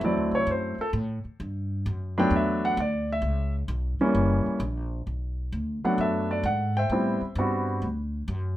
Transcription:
0.01 0.17 E2 medium
0.01 0.74 F#3 medium
0.01 0.74 A3 medium
0.01 0.74 C4 medium
0.01 0.74 E4 medium
0.01 0.34 D5 medium
0.17 0.31 D2 medium
0.31 0.46 C2 medium
0.31 0.48 C#5 medium
0.47 0.76 F#2 medium
0.51 0.80 C5 medium
0.78 0.89 A4 medium
0.78 muted upright bass stroke soft
0.93 1.22 A2 medium
1.25 muted upright bass stroke soft
1.40 1.84 G2 medium
1.86 2.30 F#2 medium
2.18 2.75 F#3 medium
2.18 2.75 A3 medium
2.18 2.75 B3 medium
2.18 2.75 D4 medium
2.18 2.32 G5 medium
2.30 2.75 E2 medium
2.36 2.64 E5 medium
2.65 2.78 F#5 loud
2.77 3.21 D2 medium
2.77 3.09 D5 medium
3.12 3.53 E5 medium
3.22 3.67 C#2 medium
3.68 3.98 B1 medium
3.99 4.58 E3 medium
3.99 4.58 G3 medium
3.99 4.59 A#3 medium
3.99 4.58 C#4 medium
3.99 muted upright bass stroke soft
4.15 4.44 F#1 medium
4.46 muted upright bass stroke soft
4.60 5.05 A#1 loud
5.07 5.51 B1 medium
5.52 5.82 D2 medium
5.84 6.42 F#3 medium
5.84 6.42 A3 medium
5.84 6.42 B3 medium
5.84 6.42 D4 medium
5.84 5.98 F#5 medium
5.84 muted upright bass stroke soft
5.98 6.43 F#2 medium
5.98 6.32 E5 medium
6.02 6.89 A4 medium
6.31 6.46 D5 medium
6.43 6.89 G#2 medium
6.43 6.74 F#5 medium
6.77 7.65 C5 medium
6.77 7.66 E5 medium
6.77 7.19 G5 medium
6.89 7.19 A2 medium
6.89 7.20 G3 medium
6.89 7.20 B3 medium
6.89 7.20 C4 medium
6.89 7.20 E4 medium
7.21 muted upright bass stroke soft
7.35 7.81 G2 medium
7.35 7.84 G3 medium
7.35 7.84 B3 medium
7.35 7.84 C4 medium
7.35 7.84 F#4 medium
7.82 8.27 D2 medium
8.28 8.57 F#2 loud

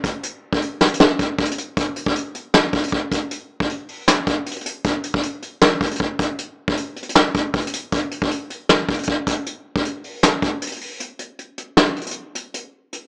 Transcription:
0.04 kick medium
0.04 closed hi-hat medium
0.23 closed hi-hat medium
0.53 kick loud
0.62 closed hi-hat medium
0.81 snare medium
0.81 closed hi-hat soft
0.81 open hi-hat medium
0.87 closed hi-hat medium
0.94 closed hi-hat medium
1.00 snare loud
1.19 kick loud
1.19 closed hi-hat medium
1.39 kick loud
1.39 closed hi-hat soft
1.45 closed hi-hat medium
1.51 closed hi-hat medium
1.58 closed hi-hat medium
1.77 kick loud
1.77 closed hi-hat medium
1.96 closed hi-hat medium
2.06 kick loud
2.16 closed hi-hat medium
2.35 closed hi-hat medium
2.54 snare loud
2.73 kick loud
2.73 closed hi-hat soft
2.78 closed hi-hat medium
2.83 closed hi-hat medium
2.88 closed hi-hat medium
2.92 kick loud
3.12 kick medium
3.12 closed hi-hat medium
3.31 closed hi-hat medium
3.60 kick loud
3.70 closed hi-hat medium
3.89 open hi-hat medium
4.08 snare loud
4.08 hi-hat pedal medium
4.27 kick loud
4.27 closed hi-hat medium
4.46 closed hi-hat medium
4.51 closed hi-hat medium
4.56 closed hi-hat medium
4.61 closed hi-hat soft
4.66 closed hi-hat loud
4.85 kick loud
4.85 closed hi-hat medium
5.04 closed hi-hat medium
5.14 kick loud
5.23 closed hi-hat medium
5.42 closed hi-hat medium
5.62 snare loud
5.81 kick loud
5.81 closed hi-hat soft
5.86 closed hi-hat soft
5.91 closed hi-hat medium
5.96 closed hi-hat medium
6.00 kick loud
6.19 kick loud
6.19 closed hi-hat medium
6.39 closed hi-hat medium
6.68 kick loud
6.77 closed hi-hat medium
6.96 closed hi-hat soft
7.03 closed hi-hat medium
7.09 closed hi-hat medium
7.15 snare loud
7.35 kick medium
7.35 closed hi-hat medium
7.54 kick loud
7.54 closed hi-hat soft
7.60 closed hi-hat medium
7.67 closed hi-hat medium
7.73 closed hi-hat medium
7.92 kick loud
7.92 closed hi-hat medium
8.11 closed hi-hat medium
8.22 kick loud
8.31 closed hi-hat medium
8.50 closed hi-hat medium
8.69 snare loud
8.89 kick loud
8.89 closed hi-hat soft
8.94 closed hi-hat soft
8.99 closed hi-hat medium
9.03 closed hi-hat medium
9.08 kick loud
9.27 kick medium
9.27 closed hi-hat medium
9.46 closed hi-hat medium
9.76 kick loud
9.85 closed hi-hat medium
10.04 open hi-hat medium
10.23 snare loud
10.23 hi-hat pedal medium
10.42 kick loud
10.42 closed hi-hat medium
10.62 closed hi-hat medium
10.67 closed hi-hat medium
10.72 closed hi-hat medium
10.76 closed hi-hat soft
10.81 open hi-hat medium
11.00 closed hi-hat medium
11.19 closed hi-hat medium
11.39 closed hi-hat medium
11.58 closed hi-hat medium
11.77 snare loud
11.96 closed hi-hat soft
12.01 closed hi-hat soft
12.06 closed hi-hat medium
12.11 closed hi-hat medium
12.35 closed hi-hat medium
12.54 closed hi-hat medium
12.93 closed hi-hat medium

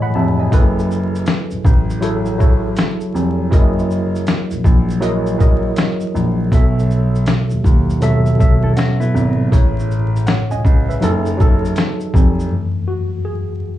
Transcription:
0.00 0.54 A2 medium
0.00 0.54 E3 medium
0.00 0.52 G#4 medium
0.00 0.53 C#5 medium
0.00 0.40 D#5 medium
0.00 0.15 F#5 medium
0.00 0.39 G#5 medium
0.00 0.14 B5 medium
0.15 0.48 F1 medium
0.15 0.38 E5 medium
0.15 0.38 A5 medium
0.39 0.75 D#5 medium
0.39 0.75 G#5 medium
0.51 1.23 F#1 loud
0.51 1.83 F#3 medium
0.51 1.83 E4 medium
0.51 1.84 G#4 medium
0.51 1.84 A4 medium
0.51 1.84 B4 medium
0.51 kick loud
0.51 closed hi-hat medium
0.51 shaker medium
0.79 shaker soft
0.91 shaker soft
1.15 shaker medium
1.26 snare loud
1.26 closed hi-hat medium
1.26 shaker medium
1.51 1.57 A1 soft
1.51 shaker soft
1.65 2.73 A1 medium
1.65 kick medium
1.65 shaker soft
1.90 shaker soft
2.01 2.35 F#3 medium
2.01 2.35 E4 medium
2.01 2.36 G#4 medium
2.01 2.36 A4 medium
2.01 2.36 C#5 medium
2.01 closed hi-hat medium
2.01 shaker medium
2.26 shaker soft
2.38 3.39 F#3 medium
2.38 3.39 E4 medium
2.38 3.40 G#4 medium
2.38 3.40 A4 medium
2.38 3.41 C#5 medium
2.38 kick medium
2.38 shaker soft
2.77 snare medium
2.77 closed hi-hat medium
2.77 shaker medium
3.01 shaker soft
3.14 3.48 F1 medium
3.14 shaker soft
3.50 4.23 F#1 medium
3.50 4.83 F#3 medium
3.50 4.83 E4 medium
3.50 4.83 G#4 medium
3.50 4.84 A#4 medium
3.50 4.84 D#5 medium
3.50 kick loud
3.50 closed hi-hat medium
3.50 shaker medium
3.79 shaker soft
3.91 shaker soft
4.16 shaker soft
4.27 snare loud
4.27 closed hi-hat medium
4.27 shaker medium
4.51 4.56 A#1 soft
4.51 shaker soft
4.64 5.73 A#1 medium
4.64 kick medium
4.64 shaker soft
4.90 shaker soft
5.00 5.35 F#3 medium
5.00 5.35 E4 medium
5.00 5.35 G#4 medium
5.00 5.36 A#4 medium
5.00 5.36 D#5 medium
5.00 closed hi-hat medium
5.00 shaker medium
5.26 shaker soft
5.38 6.39 F#3 medium
5.38 6.40 E4 medium
5.38 6.40 G#4 medium
5.38 6.40 A#4 medium
5.38 6.41 D#5 medium
5.38 kick medium
5.38 shaker soft
5.76 snare loud
5.76 closed hi-hat medium
5.76 shaker medium
6.01 shaker soft
6.15 6.48 A#1 medium
6.15 shaker soft
6.51 7.23 B1 loud
6.51 7.83 B2 medium
6.51 7.83 F#3 medium
6.51 7.84 A4 medium
6.51 7.85 E5 medium
6.51 kick loud
6.51 closed hi-hat medium
6.51 shaker medium
6.79 shaker soft
6.91 shaker soft
7.16 shaker soft
7.26 snare loud
7.26 closed hi-hat medium
7.26 shaker medium
7.50 7.57 D#2 soft
7.50 shaker soft
7.64 8.73 D#2 medium
7.64 kick medium
7.64 shaker soft
7.90 shaker soft
8.00 8.35 B2 medium
8.00 8.35 F#3 medium
8.00 8.36 A4 medium
8.00 8.36 E5 medium
8.00 closed hi-hat medium
8.00 shaker medium
8.26 shaker soft
8.38 9.39 B2 medium
8.38 9.39 F#3 medium
8.38 9.40 A4 medium
8.38 9.40 E5 medium
8.38 kick medium
8.38 shaker soft
8.63 8.76 E4 medium
8.63 8.76 A4 medium
8.76 9.00 C#4 medium
8.76 9.00 F#4 medium
8.76 snare loud
8.76 closed hi-hat medium
8.76 shaker medium
9.00 9.49 B3 medium
9.00 9.49 E4 medium
9.00 shaker soft
9.15 9.48 G#1 loud
9.15 shaker soft
9.50 10.23 A1 loud
9.50 10.82 A2 medium
9.50 10.83 A3 medium
9.50 10.83 G#4 medium
9.50 10.26 C#5 medium
9.50 kick loud
9.50 closed hi-hat medium
9.50 shaker medium
9.80 shaker soft
9.91 shaker soft
10.16 shaker soft
10.27 10.50 C#5 medium
10.27 10.50 F#5 medium
10.27 snare loud
10.27 closed hi-hat medium
10.27 shaker medium
10.51 10.57 C#2 soft
10.51 10.87 D#5 medium
10.51 10.87 G#5 medium
10.51 shaker soft
10.65 10.98 C#2 medium
10.65 kick medium
10.65 shaker soft
10.89 11.25 B4 medium
10.89 11.24 E5 medium
10.89 shaker soft
11.00 11.73 F#1 loud
11.00 11.35 F#3 medium
11.00 11.35 D#4 medium
11.00 11.36 G#4 medium
11.00 11.36 A4 medium
11.00 closed hi-hat medium
11.00 shaker medium
11.26 shaker soft
11.38 12.39 F#3 medium
11.38 12.39 D#4 medium
11.38 12.40 G#4 medium
11.38 12.40 A4 medium
11.38 kick medium
11.38 shaker soft
11.65 shaker soft
11.76 snare medium
11.76 closed hi-hat medium
11.76 shaker medium
12.01 shaker soft
12.14 12.48 F1 loud
12.14 kick medium
12.14 shaker soft
12.40 shaker soft
12.51 13.06 F#2 soft
12.51 13.06 E3 soft
12.51 13.06 A3 medium
12.88 13.27 F#4 medium
13.25 13.78 G#4 medium

